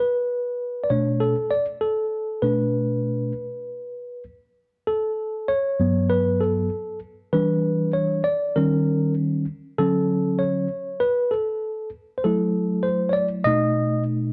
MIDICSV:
0, 0, Header, 1, 2, 480
1, 0, Start_track
1, 0, Time_signature, 4, 2, 24, 8
1, 0, Key_signature, 2, "minor"
1, 0, Tempo, 612245
1, 11234, End_track
2, 0, Start_track
2, 0, Title_t, "Tine electric piano"
2, 0, Program_c, 0, 4
2, 0, Note_on_c, 0, 71, 80
2, 656, Note_on_c, 0, 74, 62
2, 693, Note_off_c, 0, 71, 0
2, 707, Note_off_c, 0, 74, 0
2, 707, Note_on_c, 0, 73, 78
2, 708, Note_on_c, 0, 47, 48
2, 714, Note_on_c, 0, 57, 44
2, 717, Note_on_c, 0, 62, 53
2, 943, Note_on_c, 0, 69, 81
2, 959, Note_off_c, 0, 73, 0
2, 1053, Note_off_c, 0, 47, 0
2, 1056, Note_off_c, 0, 57, 0
2, 1058, Note_off_c, 0, 62, 0
2, 1181, Note_on_c, 0, 74, 87
2, 1197, Note_off_c, 0, 69, 0
2, 1292, Note_off_c, 0, 74, 0
2, 1419, Note_on_c, 0, 69, 81
2, 1899, Note_on_c, 0, 71, 74
2, 1901, Note_on_c, 0, 47, 45
2, 1903, Note_on_c, 0, 57, 44
2, 1910, Note_on_c, 0, 62, 53
2, 1922, Note_off_c, 0, 69, 0
2, 2597, Note_off_c, 0, 47, 0
2, 2598, Note_off_c, 0, 57, 0
2, 2602, Note_off_c, 0, 62, 0
2, 3316, Note_off_c, 0, 71, 0
2, 3820, Note_on_c, 0, 69, 81
2, 4299, Note_on_c, 0, 73, 98
2, 4323, Note_off_c, 0, 69, 0
2, 4545, Note_on_c, 0, 43, 54
2, 4545, Note_on_c, 0, 54, 45
2, 4551, Note_on_c, 0, 59, 56
2, 4779, Note_on_c, 0, 71, 95
2, 4802, Note_off_c, 0, 73, 0
2, 5021, Note_on_c, 0, 69, 74
2, 5035, Note_off_c, 0, 71, 0
2, 5239, Note_off_c, 0, 43, 0
2, 5239, Note_off_c, 0, 54, 0
2, 5242, Note_off_c, 0, 59, 0
2, 5477, Note_off_c, 0, 69, 0
2, 5744, Note_on_c, 0, 71, 83
2, 5746, Note_on_c, 0, 52, 54
2, 5754, Note_on_c, 0, 55, 50
2, 5756, Note_on_c, 0, 62, 57
2, 6199, Note_off_c, 0, 71, 0
2, 6221, Note_on_c, 0, 73, 84
2, 6440, Note_off_c, 0, 52, 0
2, 6444, Note_off_c, 0, 55, 0
2, 6445, Note_off_c, 0, 62, 0
2, 6460, Note_on_c, 0, 74, 90
2, 6476, Note_off_c, 0, 73, 0
2, 6710, Note_on_c, 0, 70, 80
2, 6712, Note_on_c, 0, 51, 60
2, 6715, Note_on_c, 0, 55, 52
2, 6716, Note_off_c, 0, 74, 0
2, 6721, Note_on_c, 0, 61, 61
2, 7162, Note_off_c, 0, 70, 0
2, 7403, Note_off_c, 0, 51, 0
2, 7404, Note_off_c, 0, 55, 0
2, 7407, Note_off_c, 0, 61, 0
2, 7671, Note_on_c, 0, 50, 48
2, 7671, Note_on_c, 0, 69, 93
2, 7678, Note_on_c, 0, 54, 52
2, 7685, Note_on_c, 0, 61, 59
2, 8144, Note_on_c, 0, 73, 86
2, 8168, Note_off_c, 0, 69, 0
2, 8362, Note_off_c, 0, 50, 0
2, 8366, Note_off_c, 0, 54, 0
2, 8370, Note_off_c, 0, 61, 0
2, 8625, Note_on_c, 0, 71, 94
2, 8645, Note_off_c, 0, 73, 0
2, 8868, Note_on_c, 0, 69, 72
2, 8878, Note_off_c, 0, 71, 0
2, 9321, Note_off_c, 0, 69, 0
2, 9547, Note_on_c, 0, 72, 63
2, 9593, Note_off_c, 0, 72, 0
2, 9597, Note_on_c, 0, 69, 75
2, 9600, Note_on_c, 0, 54, 50
2, 9604, Note_on_c, 0, 57, 50
2, 9613, Note_on_c, 0, 64, 54
2, 10058, Note_on_c, 0, 72, 77
2, 10091, Note_off_c, 0, 69, 0
2, 10265, Note_on_c, 0, 73, 67
2, 10271, Note_off_c, 0, 72, 0
2, 10294, Note_on_c, 0, 74, 90
2, 10312, Note_off_c, 0, 73, 0
2, 10407, Note_off_c, 0, 74, 0
2, 10527, Note_off_c, 0, 54, 0
2, 10529, Note_off_c, 0, 57, 0
2, 10533, Note_off_c, 0, 64, 0
2, 10540, Note_on_c, 0, 75, 101
2, 10550, Note_on_c, 0, 47, 57
2, 10557, Note_on_c, 0, 57, 53
2, 10560, Note_on_c, 0, 63, 64
2, 10997, Note_off_c, 0, 75, 0
2, 11234, Note_off_c, 0, 47, 0
2, 11234, Note_off_c, 0, 57, 0
2, 11234, Note_off_c, 0, 63, 0
2, 11234, End_track
0, 0, End_of_file